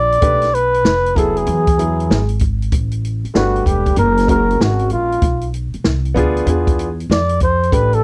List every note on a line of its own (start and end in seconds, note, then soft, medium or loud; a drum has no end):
0.00 0.19 A#1 medium
0.00 0.56 D5 loud
0.12 closed hi-hat soft
0.21 0.82 B1 medium
0.21 0.46 A3 medium
0.21 0.47 D4 medium
0.21 0.47 G4 medium
0.21 0.48 B4 medium
0.21 kick loud
0.21 closed hi-hat medium
0.42 snare soft
0.42 closed hi-hat soft
0.54 1.18 B4 loud
0.54 closed hi-hat medium
0.74 closed hi-hat soft
0.85 1.44 F1 medium
0.85 snare loud
1.06 closed hi-hat soft
1.15 1.63 F#3 medium
1.15 1.63 B3 medium
1.15 1.64 E4 medium
1.15 1.64 G#4 medium
1.15 1.39 A4 medium
1.15 kick medium
1.15 closed hi-hat medium
1.37 2.42 G#4 medium
1.37 closed hi-hat medium
1.47 2.06 E2 loud
1.47 closed hi-hat medium
1.67 kick medium
1.67 closed hi-hat medium
1.78 2.17 F#3 medium
1.78 2.18 B3 medium
1.78 2.18 E4 medium
1.78 2.18 G#4 medium
1.78 closed hi-hat medium
2.00 closed hi-hat soft
2.10 2.69 G#1 medium
2.10 snare loud
2.29 closed hi-hat medium
2.39 kick loud
2.39 closed hi-hat medium
2.62 closed hi-hat soft
2.72 3.21 A1 medium
2.72 kick loud
2.72 closed hi-hat medium
2.92 closed hi-hat soft
3.05 closed hi-hat medium
3.25 muted upright bass stroke soft
3.25 closed hi-hat soft
3.34 3.65 G1 medium
3.34 3.98 G3 medium
3.34 3.97 A3 medium
3.34 3.97 D4 medium
3.34 3.69 F#4 medium
3.34 3.98 B4 medium
3.34 snare loud
3.56 closed hi-hat soft
3.66 3.96 E1 medium
3.66 3.98 G4 medium
3.66 kick medium
3.66 closed hi-hat medium
3.86 kick medium
3.86 closed hi-hat soft
3.96 4.56 F#1 loud
3.96 4.27 A#4 medium
3.96 closed hi-hat medium
4.18 snare soft
4.18 closed hi-hat medium
4.27 5.17 G#3 medium
4.27 5.18 C#4 medium
4.27 5.18 F#4 medium
4.27 5.19 A#4 medium
4.27 4.64 A#4 medium
4.27 kick medium
4.27 closed hi-hat medium
4.51 closed hi-hat soft
4.60 4.90 G#1 medium
4.60 4.92 F#4 medium
4.60 snare loud
4.79 closed hi-hat soft
4.90 5.21 A#1 medium
4.90 5.50 F4 medium
4.90 closed hi-hat medium
5.12 closed hi-hat soft
5.22 5.71 B1 medium
5.22 kick loud
5.22 closed hi-hat medium
5.41 closed hi-hat soft
5.54 closed hi-hat medium
5.74 muted upright bass stroke soft
5.74 closed hi-hat soft
5.84 6.14 C2 medium
5.84 snare loud
6.05 closed hi-hat soft
6.14 6.46 D2 medium
6.14 6.44 B3 medium
6.14 6.45 D4 medium
6.14 6.46 F4 medium
6.14 6.47 G#4 loud
6.14 kick medium
6.14 closed hi-hat medium
6.37 closed hi-hat medium
6.46 7.06 E2 loud
6.46 6.86 B3 medium
6.46 6.86 D4 medium
6.46 6.87 F4 medium
6.46 6.87 G#4 medium
6.46 closed hi-hat medium
6.67 kick medium
6.67 closed hi-hat medium
6.79 closed hi-hat medium
7.00 closed hi-hat soft
7.10 7.69 F2 medium
7.10 7.39 D5 medium
7.10 snare loud
7.29 closed hi-hat medium
7.40 7.75 C5 medium
7.40 kick loud
7.40 closed hi-hat medium
7.63 closed hi-hat soft
7.72 8.04 A1 medium
7.72 8.04 A3 medium
7.72 8.04 D4 medium
7.72 8.04 G4 medium
7.72 7.96 B4 medium
7.72 8.04 B4 medium
7.72 kick loud
7.72 closed hi-hat medium
7.93 8.04 A4 loud
7.93 closed hi-hat soft